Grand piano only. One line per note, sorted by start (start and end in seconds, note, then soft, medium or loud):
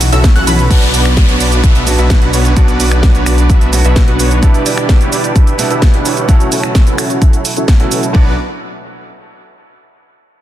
0.69 1.83 B2 medium
0.69 1.84 F#3 medium
0.69 1.84 B3 medium
0.69 1.84 D4 medium
0.69 1.85 F#4 loud
1.86 2.53 B2 medium
1.86 2.53 F#3 medium
1.86 2.54 B3 medium
1.86 2.54 D4 medium
1.86 2.54 F#4 loud
2.55 3.69 B2 medium
2.55 3.70 F#3 medium
2.55 3.70 B3 medium
2.55 3.70 D4 medium
2.55 3.71 F#4 loud
3.72 4.39 B2 medium
3.72 4.40 F#3 medium
3.72 4.40 B3 medium
3.72 4.40 D4 medium
3.72 4.41 F#4 loud
4.42 5.56 B2 loud
4.42 5.56 G3 medium
4.42 5.56 B3 medium
4.42 5.56 D4 medium
4.42 5.57 E4 loud
5.58 6.25 B2 loud
5.58 6.26 G3 medium
5.58 6.26 B3 medium
5.58 6.26 D4 medium
5.58 6.27 E4 loud
6.28 7.42 B2 loud
6.28 7.42 F#3 medium
6.28 7.42 A3 medium
6.28 7.42 C#4 medium
6.28 7.43 E4 loud
7.79 8.12 B2 medium
7.79 8.12 F#3 medium
7.79 8.12 A3 medium
7.79 8.12 C#4 medium
7.79 8.12 E4 medium
8.13 8.31 F#3 medium
8.13 8.32 B3 medium
8.13 8.32 D4 medium
8.13 8.33 F#4 medium